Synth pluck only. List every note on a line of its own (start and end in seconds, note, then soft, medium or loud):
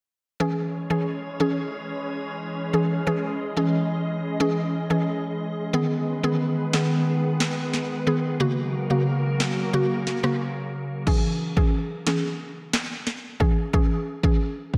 0.40 0.86 E3 medium
0.40 0.86 C#4 medium
0.40 0.86 G#4 medium
0.90 1.07 E3 medium
0.90 1.07 C#4 medium
0.90 1.07 G#4 medium
1.40 1.56 E3 medium
1.40 1.57 C#4 medium
1.40 1.57 G#4 medium
2.73 2.90 E3 medium
2.73 2.90 C#4 medium
2.73 2.90 G#4 medium
3.07 3.23 E3 medium
3.07 3.23 C#4 medium
3.07 3.23 G#4 medium
3.57 3.73 E3 medium
3.57 3.73 C#4 medium
3.57 3.73 G#4 medium
4.40 4.86 E3 medium
4.40 4.86 C#4 medium
4.40 4.86 G#4 loud
4.90 5.07 E3 medium
4.90 5.07 C#4 medium
4.90 5.07 G#4 medium
5.73 6.19 D#3 medium
5.73 6.20 B3 medium
5.73 6.20 G#4 loud
6.23 6.40 D#3 medium
6.23 6.40 B3 medium
6.23 6.40 G#4 medium
6.73 6.90 D#3 medium
6.73 6.90 B3 medium
6.73 6.90 G#4 medium
8.07 8.23 D#3 medium
8.07 8.23 B3 medium
8.07 8.23 G#4 medium
8.40 8.56 C#3 medium
8.40 8.57 A#3 medium
8.40 8.57 F#4 loud
8.90 9.07 C#3 medium
8.90 9.07 A#3 medium
8.90 9.07 F#4 medium
9.73 10.19 C#3 loud
9.73 10.20 A#3 medium
9.73 10.20 F#4 loud
10.23 10.40 C#3 medium
10.23 10.40 A#3 medium
10.23 10.40 F#4 medium
11.07 11.53 E3 medium
11.07 11.53 C#4 medium
11.07 11.53 G#4 loud
11.57 11.73 E3 medium
11.57 11.73 C#4 medium
11.57 11.73 G#4 medium
12.07 12.23 E3 medium
12.07 12.23 C#4 medium
12.07 12.23 G#4 medium
13.40 13.56 E3 medium
13.40 13.57 C#4 medium
13.40 13.57 G#4 medium
13.73 13.90 E3 medium
13.73 13.90 C#4 medium
13.73 13.90 G#4 loud
14.23 14.40 E3 medium
14.23 14.40 C#4 medium
14.23 14.40 G#4 medium